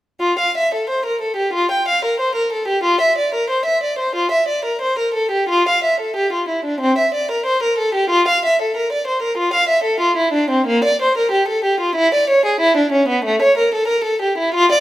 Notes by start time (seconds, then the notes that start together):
0.20 F4
0.39 F5
0.58 E5
0.75 A4
0.90 C5
1.06 A#4
1.21 A4
1.37 G4
1.53 F4
1.72 G5
1.89 F5
2.05 A#4
2.20 C5
2.35 A#4
2.53 A4
2.68 G4
2.84 F4
3.01 E5
3.18 D5
3.35 A#4
3.50 C5
3.66 E5
3.83 D5
3.99 C5
4.16 F4
4.31 E5
4.48 D5
4.65 A#4
4.82 C5
4.99 A#4
5.14 A4
5.31 G4
5.49 F4
5.69 F5
5.84 E5
6.00 A4
6.16 G4
6.33 F4
6.49 E4
6.65 D4
6.81 C4
6.98 E5
7.14 D5
7.31 A#4
7.46 C5
7.63 A#4
7.78 A4
7.95 G4
8.10 F4
8.28 F5
8.45 E5
8.62 A4
8.77 A#4
8.92 D5
9.07 C5
9.22 A#4
9.38 F4
9.54 F5
9.69 E5
9.84 A4
10.00 F4
10.17 E4
10.33 D4
10.50 C4
10.67 A#3
10.84 D5
11.02 C5
11.18 A#4
11.32 G4
11.48 A4
11.65 G4
11.80 F4
11.96 E4
12.14 D5
12.30 C#5
12.46 G#4
12.61 E4
12.77 D4
12.92 C#4
13.08 B3
13.25 A3
13.42 C#5
13.58 A#4
13.74 A4
13.88 A#4
14.04 A4
14.22 G4
14.38 E4
14.54 F4
14.72 D5